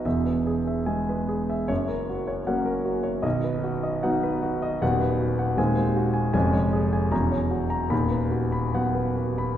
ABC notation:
X:1
M:2/4
L:1/16
Q:1/4=76
K:B
V:1 name="Grand piano"
e B G e g B G e | c A F c f A F c | d B F d f B F d | [K:Blyd] f B F f g ^B F g |
g c G g a c F a | b B F b f B F b |]
V:2 name="Grand piano" clef=bass
[E,,,E,,]4 [G,B,]4 | [F,,,F,,]4 [F,A,C]4 | [B,,,,B,,,]4 [F,B,D]4 | [K:Blyd] [D,,,D,,F,B,]4 [D,,,D,,G,^B,]4 |
[E,,,E,,G,C]4 [=E,,,=E,,F,C]4 | [D,,,D,,]4 [F,B,]4 |]